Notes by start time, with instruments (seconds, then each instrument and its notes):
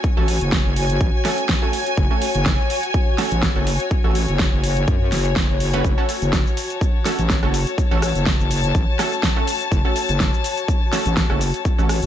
Already playing: string section F#4 C#5 G#5
0.04 kick, closed hi-hat
0.17 wobble bass A1, synth stab A3 C#4 F#4 A4
0.28 open hi-hat
0.41 wobble bass F#1, closed hi-hat
0.52 kick, snare, closed hi-hat
0.65 wobble bass F#1
0.76 open hi-hat
0.90 closed hi-hat
1.01 wobble bass A1, kick, closed hi-hat
1.25 synth stab A3 C#4 F#4 A4, snare, open hi-hat
1.38 closed hi-hat
1.49 kick, snare, closed hi-hat
1.62 synth stab A3 C#4 F#4 A4
1.73 open hi-hat
1.86 closed hi-hat
1.97 wobble bass F#1, kick, closed hi-hat
2.11 synth stab A3 C#4 F#4 A4
2.22 open hi-hat
2.35 wobble bass F#1, closed hi-hat
2.46 kick, snare, closed hi-hat
2.70 open hi-hat
2.83 closed hi-hat
2.94 kick, closed hi-hat
3.18 synth stab A3 C#4 F#4 A4, snare, open hi-hat
3.31 wobble bass A1, closed hi-hat
3.43 kick, snare, closed hi-hat
3.56 wobble bass F#1, synth stab A3 C#4 F#4 A4
3.67 open hi-hat
3.80 closed hi-hat
3.91 kick, closed hi-hat
4.04 wobble bass A1, synth stab A3 C#4 F#4 A4
4.15 open hi-hat
4.28 wobble bass F#1, closed hi-hat
4.39 kick, snare, closed hi-hat
4.53 wobble bass F#1
4.64 open hi-hat
4.77 closed hi-hat
4.88 wobble bass F#2, kick, closed hi-hat
5.12 wobble bass F#1, snare, open hi-hat
5.25 closed hi-hat
5.36 kick, snare, closed hi-hat
5.49 wobble bass F#1
5.60 open hi-hat
5.73 synth stab A3 C#4 F#4 B4, closed hi-hat
5.84 wobble bass F#1, kick, closed hi-hat, shaker
5.98 synth stab A3 C#4 F#4 A4
6.09 open hi-hat, shaker
6.22 wobble bass F#1, closed hi-hat, shaker
6.33 kick, snare, closed hi-hat, shaker
6.47 shaker
6.53 string section A5
6.57 open hi-hat, shaker
6.70 closed hi-hat, shaker
6.81 kick, closed hi-hat, shaker
7.05 synth stab A3 C#4 F#4 A4, snare, open hi-hat, shaker
7.19 wobble bass A1, closed hi-hat, shaker
7.30 kick, snare, closed hi-hat, shaker
7.43 wobble bass F#1, synth stab A3 C#4 F#4 A4, cross-stick
7.54 open hi-hat, shaker
7.67 closed hi-hat, shaker
7.78 kick, closed hi-hat, shaker
7.91 wobble bass A1, synth stab A3 C#4 F#4 A4
8.02 cross-stick, open hi-hat, shaker
8.15 wobble bass F#1, closed hi-hat, shaker
8.26 kick, snare, closed hi-hat, shaker
8.40 wobble bass F#1, shaker
8.51 open hi-hat, shaker
8.64 closed hi-hat, shaker
8.75 wobble bass A1, kick, closed hi-hat, shaker
8.99 synth stab A3 C#4 F#4 A4, cross-stick, snare, open hi-hat, shaker
9.12 closed hi-hat, shaker
9.23 kick, snare, closed hi-hat, shaker
9.36 synth stab A3 C#4 F#4 A4
9.47 open hi-hat, shaker
9.61 closed hi-hat, shaker
9.72 wobble bass F#1, kick, closed hi-hat, shaker
9.85 synth stab A3 C#4 F#4 A4
9.96 open hi-hat, shaker
10.09 wobble bass F#1, closed hi-hat, shaker
10.20 kick, snare, closed hi-hat, shaker
10.34 shaker
10.44 open hi-hat, shaker
10.57 closed hi-hat, shaker
10.68 kick, closed hi-hat, shaker
10.93 synth stab A3 C#4 F#4 A4, snare, open hi-hat, shaker
11.06 wobble bass A1, closed hi-hat, shaker
11.17 kick, snare, closed hi-hat, shaker
11.30 wobble bass F#1, synth stab A3 C#4 F#4 A4, cross-stick
11.41 open hi-hat, shaker
11.54 closed hi-hat, shaker
11.65 kick, closed hi-hat, shaker
11.78 wobble bass A1, synth stab A3 C#4 F#4 A4, shaker
11.89 cross-stick, open hi-hat, shaker
12.02 wobble bass F#1, closed hi-hat